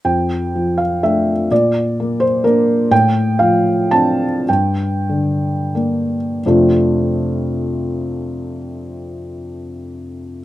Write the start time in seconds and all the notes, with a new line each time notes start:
0.05 F2 G5
0.55 F3
0.78 F5
1.03 A3 D4 E5
1.51 A#2 D5
2.00 A#3
2.20 C5
2.44 A#3 D4 A#4
2.91 A2 G5
3.39 F3 F5
3.91 C4 D4 A5
4.49 G2 G5
5.09 D3
5.75 A#3 D4
6.46 F2 C3 A3 C4 D4 F4